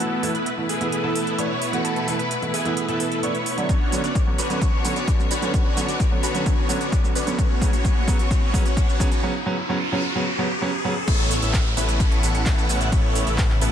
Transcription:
Already playing: E3 A3 B3 F#4
0.00 B2 B3 E4 A4 B4, closed hi-hat
0.22 E3 A3 B3 E4, open hi-hat
0.35 B3 E4 B4, closed hi-hat
0.46 closed hi-hat
0.57 E3 A3 B3 E4
0.69 B3 E4 G#4, open hi-hat
0.80 E3 A3 B3 E4, closed hi-hat
0.92 closed hi-hat
1.03 E3 A3 B3 E4 A4
1.16 open hi-hat
1.27 closed hi-hat
1.38 E3 A3 B3 D4 E4 C#5, closed hi-hat
1.62 open hi-hat
1.73 E3 A3 B3 F#4, closed hi-hat
1.84 B3 E4 A4, closed hi-hat
1.96 closed hi-hat
2.07 E3 A3 B3 E4, open hi-hat
2.19 B3 E4 B4, closed hi-hat
2.31 closed hi-hat
2.42 E3 A3 B3 E4, closed hi-hat
2.54 B3 E4 G#4, open hi-hat
2.65 E3 A3 B3 E4, closed hi-hat
2.77 closed hi-hat
2.88 E3 A3 B3 E4 A4, closed hi-hat
3.00 open hi-hat
3.12 closed hi-hat
3.22 E3 A3 B3 D4 E4 C#5, closed hi-hat
3.35 closed hi-hat
3.46 open hi-hat
3.57 D3 F#3 B3 D4, closed hi-hat
3.69 D3 B3 C#4 D4 F#4 C#5, kick, closed hi-hat, riser, cabasa
3.92 D3 F#3 B3 C#4, open hi-hat, cabasa
4.04 B3 C#4 D4 F#4 D5, closed hi-hat, cabasa
4.15 kick, closed hi-hat, cabasa
4.26 D3 F#3 B3 C#4
4.38 B3 C#4 D4 F#4 B4, open hi-hat, cabasa
4.49 D3 F#3 B3 C#4, closed hi-hat, cabasa
4.61 B3 C#4 D4 F#4 C#5, kick, closed hi-hat, cabasa
4.84 D3 F#3 B3 C#4, open hi-hat, cabasa
4.96 B3 C#4 D4 F#4 D5, closed hi-hat, cabasa
5.08 kick, closed hi-hat, cabasa
5.19 D3 F#3 B3 C#4, cabasa
5.31 B3 C#4 D4 F#4 B4, open hi-hat, cabasa
5.42 D3 F#3 B3 C#4, closed hi-hat, cabasa
5.54 B3 C#4 D4 F#4, kick, closed hi-hat, cabasa
5.76 D3 F#3 B3 C#4, open hi-hat, cabasa
5.88 B3 C#4 D4 F#4 D5, closed hi-hat, cabasa
6.00 kick, closed hi-hat, cabasa
6.11 D3 F#3 B3 C#4
6.23 B3 C#4 D4 F#4 B4, open hi-hat, cabasa
6.34 D3 F#3 B3 C#4, closed hi-hat, cabasa
6.46 B3 C#4 D4 F#4 C#5, kick, closed hi-hat, cabasa
6.69 D3 F#3 B3 C#4, open hi-hat, cabasa
6.81 B3 C#4 D4 F#4 D5, closed hi-hat, cabasa
6.92 kick, closed hi-hat, cabasa
7.03 D3 F#3 B3 C#4, cabasa
7.15 B3 C#4 D4 F#4 B4, open hi-hat, cabasa
7.26 D3 F#3 B3 C#4, closed hi-hat, cabasa
7.38 A2 E3 A3 B3 C#4 F#4 C#5, kick, closed hi-hat, cabasa
7.61 C#3 F#3 B3 C#4, kick, open hi-hat, cabasa
7.73 B3 C#4 F#4 C#5, closed hi-hat, cabasa
7.84 B3 C#4 F#4 C#5, kick, closed hi-hat, cabasa
8.07 C#3 F#3 B3 C#4, kick, open hi-hat, cabasa
8.19 B3 C#4 F#4 C#5, closed hi-hat, cabasa
8.31 B3 C#4 F#4 C#5, kick, closed hi-hat, cabasa
8.53 C#3 F#3 B3 C#4, kick, open hi-hat, cabasa
8.65 B3 C#4 F#4 C#5, closed hi-hat, cabasa
8.77 B3 C#4 F#4 C#5, kick, closed hi-hat, cabasa
8.89 cabasa
8.99 C#3 F#3 B3 C#4, kick, open hi-hat, cabasa
9.11 B3 C#4 F#4 C#5, closed hi-hat, cabasa
9.23 C#3 F#3 B3 C#4, noise sweep
9.46 C#3 F#3 B3 C#4
9.69 C#3 F#3 B3 C#4
9.92 C#3 F#3 B3 C#4
10.15 C#3 F#3 B3 C#4
10.38 C#3 F#3 B3 C#4
10.61 C#3 F#3 B3 C#4
10.84 C#3 F#3 B3 C#4
11.08 A1 C#3 A3 B3 C#4 E4 A4 C#5, kick, closed hi-hat, crash, ride, downlifter, cabasa
11.31 open hi-hat, cabasa
11.42 A1 B3 C#4 E4 A4 E5, closed hi-hat, cabasa
11.54 kick, clap, closed hi-hat, ride, cabasa
11.77 A1 B3 C#4 E4 A4 B4, open hi-hat, cabasa
11.89 closed hi-hat, cabasa
12.00 kick, closed hi-hat, ride, cabasa
12.11 A1 B3 C#4 E4 A4 C#5, closed hi-hat
12.23 A1 B3 C#4 E4 A4 F#5, open hi-hat, cabasa
12.35 closed hi-hat, cabasa
12.46 kick, clap, closed hi-hat, ride, cabasa
12.58 A1 B3 C#4 E4 A4 F#5, cabasa
12.69 open hi-hat, cabasa
12.81 closed hi-hat, cabasa
12.92 C#4 A4 C#5, kick, closed hi-hat, ride, cabasa
13.15 open hi-hat, cabasa
13.27 A1 B3 C#4 E4 A4 E5, closed hi-hat, cabasa
13.38 kick, clap, closed hi-hat, ride, cabasa
13.50 clap
13.61 A1 B3 C#4 E4 A4 B4, open hi-hat, cabasa

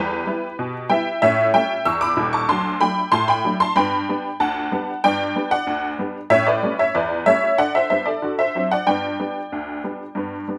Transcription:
Already playing: E2 G3 G4 B4
0.27 G3 B3 E4
0.59 B2
0.90 G3 B3 E4 E5 G5
1.22 A2 C#4 C#5 E5
1.54 G3 A3 C#4 E5 G5
1.85 E2 C#6 E6
2.01 B5 D6
2.17 D#1 D#2
2.33 A5 C#6
2.49 D2 F#3 A5 C6
2.80 F#3 A3 D4 G5 B5
3.12 A2 A5 C6
3.28 G5 B5
3.44 F#3 A3 D4
3.60 A5 C6
3.76 G2 B3 G5 B5
4.09 G3 B3 D4
4.40 D2 F#5 A5
4.72 G3 B3 D4
5.04 G2 B3 D5 G5
5.35 G3 B3 D4
5.51 D5 F#5
5.67 D2
5.99 G3 B3 D4
6.30 A2 C#4 C#5 E5
6.47 B4 D5
6.63 G3 A3 C#4
6.79 C#5 E5
6.95 E2 B4 D5
7.26 G3 A3 C#4 C#5 E5
7.58 D3 D5 F#5
7.75 C5 E5
7.90 G3 B3 D4 C5 E5
8.06 A4 D5
8.22 D3 F#4
8.39 C5 E5
8.55 F#3 C4 D4
8.71 D5 F#5
8.87 G2 B3 D5 G5
9.19 G3 B3 D4
9.52 D2
9.84 G3 B3 D4
10.15 G2 B3
10.48 G3 B3 D4

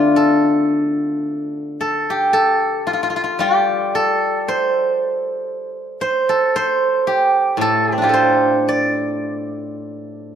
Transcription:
Already playing: D3 A3 D4 F4 C5 D5
0.16 A4
1.81 A4
2.10 G4
2.33 A4
2.87 F4
2.93 F4
3.03 F4
3.10 F4
3.16 F4
3.24 F4
3.39 G3 G4
3.95 A4
4.48 C5
6.01 C5
6.29 A4
6.56 C5
7.07 G4
7.57 A2
7.61 A4
7.92 C4 G4
7.98 D4
8.02 F4 G4
8.09 A4
8.14 C5
8.69 D5

